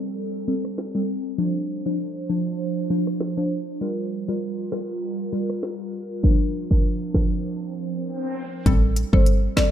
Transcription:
Already playing: analog synth pad G3 C4 A4
0.48 synth pluck G3 C4 A4
0.65 cross-stick
0.78 cross-stick, snare
0.95 synth pluck G3 C4 A4
1.38 synth pluck F3 D4 C5, analog synth pad F3 D4 C5
1.86 synth pluck F3 D4 C5
2.29 synth pluck F3 D4 C5
2.90 synth pluck F3 D4 C5
3.07 cross-stick
3.21 cross-stick, snare
3.37 synth pluck F3 D4 C5
3.81 synth pluck G3 F4 A#4, analog synth pad G3 F4 A#4, swell
4.28 synth pluck G3 F4 A#4
4.72 synth pluck G3 F4 A#4, cross-stick, snare
5.32 synth pluck G3 F4 A#4
5.50 cross-stick
5.63 cross-stick, snare
6.23 synth pluck F3 D4 A#4, analog synth pad F3 D4, kick
6.71 synth pluck F3 D4 A#4, kick
7.14 synth pluck F3 D4 A#4, kick, cross-stick, snare
8.66 fm bass A1, synth pluck G3 C4 A4, kick, closed hi-hat
8.96 closed hi-hat
9.13 fm bass G1, synth pluck G3 C4 A4, marimba C5, kick
9.26 closed hi-hat
9.57 synth pluck G3 C4 A4, marimba D5, kick, cross-stick, snare, closed hi-hat

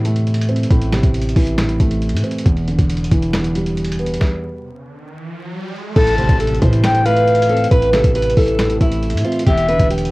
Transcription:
Already playing: 808-style bass A2, grand piano A2 C3 E3
0.05 grand piano A3, closed hi-hat
0.16 closed hi-hat
0.27 closed hi-hat
0.34 closed hi-hat
0.41 closed hi-hat
0.49 grand piano C4, closed hi-hat
0.56 closed hi-hat
0.63 closed hi-hat
0.71 808-style bass A1, grand piano A2, kick, closed hi-hat
0.82 closed hi-hat
0.92 grand piano C3, finger snap, snare, closed hi-hat
1.03 808-style bass A1, kick, closed hi-hat
1.14 closed hi-hat
1.22 closed hi-hat
1.29 closed hi-hat
1.36 808-style bass A1, grand piano E3, kick, open hi-hat
1.47 closed hi-hat
1.58 grand piano A2, finger snap, snare, closed hi-hat
1.69 closed hi-hat
1.80 808-style bass A1, grand piano A3, kick, closed hi-hat
1.91 closed hi-hat
2.02 closed hi-hat
2.09 808-style bass A2, closed hi-hat
2.17 closed hi-hat
2.24 grand piano C4, closed hi-hat
2.31 closed hi-hat
2.38 closed hi-hat
2.46 808-style bass E1, grand piano E2, kick, closed hi-hat
2.57 closed hi-hat
2.68 grand piano D3, closed hi-hat
2.79 808-style bass E1, kick, closed hi-hat
2.90 closed hi-hat
2.97 closed hi-hat
3.04 closed hi-hat
3.11 808-style bass E1, grand piano E3, kick, closed hi-hat
3.22 closed hi-hat
3.33 grand piano E2, finger snap, snare, closed hi-hat
3.44 closed hi-hat
3.55 grand piano G3, closed hi-hat
3.66 closed hi-hat
3.77 closed hi-hat
3.85 closed hi-hat
3.92 closed hi-hat
3.99 grand piano B3, closed hi-hat
4.06 closed hi-hat
4.14 closed hi-hat
4.21 kick, snare, riser
5.96 808-style bass A1, grand piano A2, steel-string acoustic guitar A4, soft synth lead A5, kick, closed hi-hat, crash, impact
6.07 closed hi-hat
6.18 grand piano C3, steel-string acoustic guitar C5, closed hi-hat
6.29 808-style bass A1, kick, closed hi-hat
6.40 steel-string acoustic guitar A4, closed hi-hat
6.47 closed hi-hat
6.55 closed hi-hat
6.62 808-style bass A2, grand piano E3, steel-string acoustic guitar C5, kick, closed hi-hat
6.73 closed hi-hat
6.84 grand piano A2, soft synth lead G5, finger snap, snare, closed hi-hat
6.95 closed hi-hat
7.05 grand piano A3, steel-string acoustic guitar B4, soft synth lead F5, closed hi-hat
7.17 closed hi-hat
7.27 closed hi-hat
7.35 closed hi-hat
7.42 closed hi-hat
7.49 grand piano C4, steel-string acoustic guitar A4, closed hi-hat
7.57 closed hi-hat
7.64 closed hi-hat
7.71 808-style bass A1, grand piano A2, steel-string acoustic guitar B4, kick, closed hi-hat
7.82 closed hi-hat
7.93 grand piano C3, steel-string acoustic guitar A4, finger snap, snare, closed hi-hat
8.04 808-style bass A1, kick, closed hi-hat
8.15 steel-string acoustic guitar B4, closed hi-hat
8.22 closed hi-hat
8.30 closed hi-hat
8.37 808-style bass A1, grand piano E3, steel-string acoustic guitar A4, kick, open hi-hat
8.48 closed hi-hat
8.59 grand piano A2, finger snap, snare, closed hi-hat
8.70 closed hi-hat
8.81 808-style bass A1, grand piano A3, steel-string acoustic guitar E4, kick, closed hi-hat
8.92 closed hi-hat
9.03 closed hi-hat
9.10 808-style bass A2, closed hi-hat
9.17 closed hi-hat
9.25 grand piano C4, steel-string acoustic guitar F4, closed hi-hat
9.32 closed hi-hat
9.39 closed hi-hat
9.46 808-style bass E1, grand piano E2, steel-string acoustic guitar G4, soft synth lead E5, kick, closed hi-hat
9.58 closed hi-hat
9.68 grand piano D3, steel-string acoustic guitar B4, closed hi-hat
9.79 808-style bass E1, kick, closed hi-hat
9.90 steel-string acoustic guitar G4, closed hi-hat
9.98 closed hi-hat
10.05 closed hi-hat

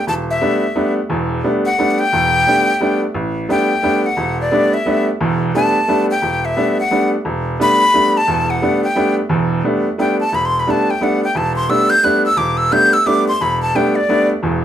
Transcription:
0.07 upright piano E1, flute A5
0.31 flute E5
0.41 upright piano G3 A3 B3 D4
0.75 upright piano G3 A3 B3 D4
1.09 upright piano E1 E2
1.44 upright piano G3 A3 B3 D4
1.65 flute F#5
1.79 upright piano G3 A3 B3 D4
1.91 flute F#5
1.99 flute G5
2.13 upright piano E1 E2
2.47 upright piano G3 A3 B3 D4
2.80 upright piano G3 A3 B3 D4
3.15 upright piano A1
3.49 upright piano G3 A3 B3 D4, flute G5
3.82 upright piano G3 A3 B3 D4
4.06 flute F#5
4.17 upright piano E1
4.41 flute D5
4.51 upright piano G3 A3 B3 D4
4.74 flute E5
4.86 upright piano G3 A3 B3 D4
5.21 upright piano E1 E2
5.54 upright piano G3 A3 B3 D4, flute A5
5.88 upright piano G3 A3 B3 D4
6.11 flute G5
6.22 upright piano E1
6.45 flute E5
6.56 upright piano G3 A3 B3 D4
6.80 flute F#5
6.91 upright piano G3 A3 B3 D4
7.25 upright piano E1
7.59 upright piano G3 A3 B3 D4, flute B5
7.94 upright piano G3 A3 B3 D4
8.17 flute A5
8.27 upright piano E1 E2
8.50 flute F#5
8.62 upright piano G3 A3 B3 D4
8.84 flute G5
8.95 upright piano G3 A3 B3 D4
9.29 upright piano E1 E2
9.64 upright piano G3 A3 B3 D4
9.98 upright piano G3 A3 B3 D4, flute G5
10.20 flute A5
10.32 upright piano E1, flute B5
10.46 flute C6
10.59 flute B5
10.67 upright piano G3 A3 B3 D4, flute A5
10.90 flute G5
11.01 upright piano G3 A3 B3 D4, flute F#5
11.24 flute G5
11.35 upright piano E1, flute A5
11.56 flute C6
11.69 upright piano G3 A3 B3 D4, flute E6
11.90 flute G6
12.03 upright piano G3 A3 B3 D4, flute F#6
12.26 flute E6
12.37 upright piano E1, flute D6
12.57 flute E6
12.71 upright piano G3 A3 B3 D4, flute G6
12.93 flute E6
13.06 upright piano G3 A3 B3 D4, flute D6
13.28 flute C6
13.41 upright piano E1, flute B5
13.62 flute A5
13.75 upright piano G3 A3 B3 D4, flute G5
13.96 flute D5
14.08 upright piano G3 A3 B3 D4
14.43 upright piano E1 E2

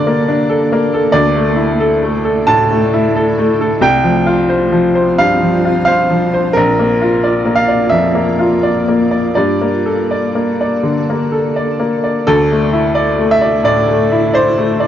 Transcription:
Already playing: upright piano G2 D3 A#3 D4 A4 A#4 D5, ambient pad A#3 D5 A5
0.07 upright piano A#3
0.28 upright piano D4
0.49 upright piano A4
0.72 upright piano A#3
0.94 upright piano A4
1.12 upright piano D2 D5, ambient pad A3 E4 D5
1.35 upright piano A3
1.56 upright piano E4
1.80 upright piano A4
2.02 upright piano A3
2.25 upright piano A4
2.47 upright piano A2 A5
2.71 upright piano A3
2.94 upright piano E4
3.16 upright piano A4
3.38 upright piano A3
3.61 upright piano A4
3.81 upright piano C2 G5, ambient pad C4 F4 C5
4.04 upright piano F3
4.26 upright piano F4
4.49 upright piano C5
4.72 upright piano F3
4.95 upright piano C5
5.18 upright piano G2 F5
5.42 upright piano F3
5.65 upright piano F4
5.85 upright piano C5 F5
6.10 upright piano F3
6.34 upright piano C5
6.53 upright piano A#1 A#4, ambient pad A#3 D5
6.79 upright piano A#3
7.02 upright piano F4
7.24 upright piano D5
7.46 upright piano A#3
7.55 upright piano F5
7.68 upright piano D5
7.90 upright piano F2 E5
8.15 upright piano A#3
8.39 upright piano F4
8.63 upright piano D5
8.88 upright piano A#3
9.11 upright piano D5
9.35 upright piano G2 D5, ambient pad A4
9.61 upright piano A#3
9.86 upright piano A4
10.11 upright piano D5
10.35 upright piano A#3
10.61 upright piano D5
10.83 upright piano D3
11.10 upright piano A#3
11.32 upright piano A4
11.56 upright piano D5
11.80 upright piano A#3
12.04 upright piano D5
12.27 upright piano D2 A4, ambient pad A3 E4 D5
12.52 upright piano A3
12.73 upright piano E4
12.95 upright piano D5
13.18 upright piano A3
13.31 upright piano E5
13.41 upright piano D5
13.64 upright piano A2 D5
13.88 upright piano A3
14.12 upright piano E4
14.33 upright piano C5 D5
14.58 upright piano A3
14.80 upright piano D5

